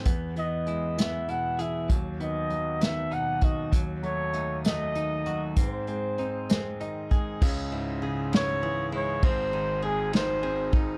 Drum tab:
CC |------|------|------|------|
RD |------|------|------|------|
HH |xxxxxx|xxxxxx|xxxxxx|xxxxxx|
SD |---o--|---o--|---o--|---o--|
BD |o-----|o----o|o-----|o----o|

CC |x-----|------|
RD |-xxxxx|xxxxxx|
HH |------|------|
SD |---o--|---o--|
BD |o-----|o----o|